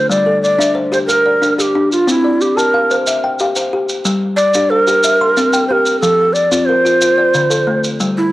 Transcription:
0.00 0.10 D4 medium
0.10 0.43 G3 medium
0.10 0.41 D5 loud
0.10 maracas medium
0.26 0.76 A4 medium
0.43 0.74 D5 loud
0.43 maracas soft
0.59 0.92 D4 medium
0.59 1.09 E5 medium
0.59 maracas medium
0.75 1.25 C5 medium
0.92 1.25 G4 medium
0.92 0.98 C5 medium
0.92 maracas soft
1.07 1.54 A#4 medium
1.07 1.58 A#4 medium
1.07 maracas medium
1.26 1.75 D5 medium
1.42 1.74 D4 medium
1.42 maracas soft
1.58 2.08 G4 medium
1.58 1.89 G4 medium
1.58 1.62 A4 medium
1.58 maracas medium
1.75 2.08 D4 medium
1.92 2.07 F4 medium
1.92 maracas soft
2.07 2.41 C4 medium
2.07 2.43 E4 medium
2.07 maracas medium
2.24 2.74 D5 medium
2.41 2.59 G4 medium
2.41 maracas soft
2.57 2.90 G4 medium
2.57 2.95 A#4 medium
2.57 3.07 A5 medium
2.57 maracas medium
2.74 3.23 F5 medium
2.91 3.24 C5 medium
2.91 maracas soft
3.07 3.56 E5 medium
3.07 maracas medium
3.24 3.73 G5 medium
3.39 3.72 G4 medium
3.39 3.90 F5 medium
3.39 maracas soft
3.56 4.06 C5 medium
3.56 maracas medium
3.73 4.06 G4 medium
3.89 maracas medium
4.05 4.38 G3 medium
4.05 maracas medium
4.36 4.72 D5 loud
4.36 maracas medium
4.54 4.88 D4 medium
4.54 4.86 G4 medium
4.54 maracas medium
4.70 5.67 A#4 loud
4.70 5.21 C5 medium
4.87 5.04 G4 medium
4.87 maracas medium
5.04 5.53 E5 medium
5.04 maracas medium
5.21 5.70 C6 medium
5.37 5.70 C4 medium
5.37 maracas medium
5.53 6.03 G5 medium
5.53 maracas medium
5.68 6.03 G4 medium
5.68 5.73 C5 medium
5.72 5.99 A#4 medium
5.86 maracas medium
6.00 6.35 F3 medium
6.00 6.35 A4 medium
6.00 maracas medium
6.33 6.67 D5 medium
6.33 maracas medium
6.51 6.85 C4 medium
6.51 6.84 F4 medium
6.51 maracas medium
6.65 7.18 A#4 medium
6.65 7.82 C5 medium
6.85 7.00 F4 medium
6.85 maracas medium
7.01 7.51 F4 medium
7.01 maracas medium
7.18 7.67 D5 medium
7.34 7.67 D3 medium
7.34 maracas medium
7.50 8.00 A4 medium
7.50 maracas medium
7.67 8.00 A3 medium
7.84 maracas medium
8.00 8.32 G3 medium
8.00 maracas medium
8.18 8.32 E4 loud

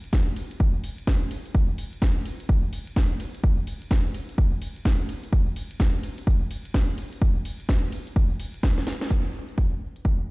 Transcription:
0.04 closed hi-hat medium
0.13 kick loud
0.13 snare loud
0.13 closed hi-hat medium
0.36 open hi-hat loud
0.36 ride medium
0.51 closed hi-hat medium
0.60 kick loud
0.60 closed hi-hat medium
0.84 open hi-hat loud
0.84 ride medium
0.98 closed hi-hat medium
1.07 kick loud
1.07 snare loud
1.07 closed hi-hat medium
1.31 open hi-hat loud
1.31 ride medium
1.46 closed hi-hat medium
1.55 kick loud
1.55 closed hi-hat soft
1.78 open hi-hat loud
1.78 ride medium
1.93 closed hi-hat medium
2.02 kick loud
2.02 snare loud
2.02 closed hi-hat medium
2.25 open hi-hat medium
2.25 ride medium
2.40 closed hi-hat medium
2.49 kick loud
2.49 closed hi-hat medium
2.73 open hi-hat loud
2.73 ride medium
2.87 closed hi-hat medium
2.96 kick loud
2.96 snare loud
2.96 closed hi-hat medium
3.20 open hi-hat medium
3.20 ride medium
3.35 closed hi-hat medium
3.44 kick loud
3.44 closed hi-hat medium
3.67 open hi-hat loud
3.67 ride medium
3.82 closed hi-hat medium
3.91 kick loud
3.91 snare loud
3.91 closed hi-hat medium
4.14 open hi-hat medium
4.14 ride medium
4.29 closed hi-hat medium
4.38 kick loud
4.38 closed hi-hat medium
4.62 open hi-hat loud
4.62 ride medium
4.76 closed hi-hat medium
4.85 kick loud
4.85 snare loud
4.85 closed hi-hat medium
5.09 open hi-hat medium
5.09 ride medium
5.24 closed hi-hat medium
5.33 kick loud
5.33 closed hi-hat medium
5.56 open hi-hat loud
5.56 ride medium
5.71 closed hi-hat medium
5.80 kick loud
5.80 snare loud
5.80 closed hi-hat medium
6.03 open hi-hat medium
6.03 ride medium
6.18 closed hi-hat medium
6.27 kick loud
6.27 closed hi-hat medium
6.51 open hi-hat loud
6.51 ride medium
6.65 closed hi-hat medium
6.74 kick loud
6.74 snare loud
6.74 closed hi-hat medium
6.98 open hi-hat medium
6.98 ride medium
7.13 closed hi-hat medium
7.21 kick loud
7.21 closed hi-hat medium
7.45 open hi-hat loud
7.45 ride medium
7.60 closed hi-hat medium
7.69 kick loud
7.69 snare loud
7.69 closed hi-hat medium
7.92 open hi-hat medium
7.92 ride medium
8.07 closed hi-hat medium
8.16 kick loud
8.16 closed hi-hat medium
8.40 open hi-hat loud
8.40 ride medium
8.54 closed hi-hat medium
8.63 kick loud
8.63 snare loud
8.63 closed hi-hat medium
8.78 snare medium
8.87 snare medium
8.87 open hi-hat medium
8.87 ride medium
9.01 snare medium
9.01 closed hi-hat medium
9.10 kick loud
9.10 closed hi-hat medium
9.49 closed hi-hat medium
9.58 kick loud
9.58 closed hi-hat medium
9.96 closed hi-hat medium
10.05 kick loud
10.05 closed hi-hat medium

